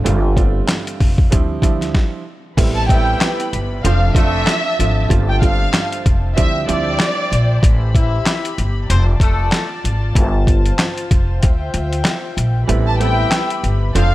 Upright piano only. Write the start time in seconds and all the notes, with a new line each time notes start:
0.04 G3 A3 C4 D4 F4
0.36 G3 A3 C4 D4 F4
1.31 F3 G3 C4 D4 E4
1.62 F3 G3 C4 D4 E4
2.57 G3 A3 B3 C4 E4
2.89 G3 A3 B3 C4 E4
3.84 F3 A3 C4 D4 F4
4.14 F3 A3 C4 D4 F4
4.79 F3 A3 C4 D4 F4
5.09 G3 A3 C4 D4 F4
5.41 G3 A3 C4 D4 F4
6.36 F3 G3 C4 D4 E4
6.67 F3 G3 C4 D4 E4
12.67 G3 A3 B3 C4 E4
12.99 G3 A3 B3 C4 E4
13.95 F3 A3 C4 D4 F4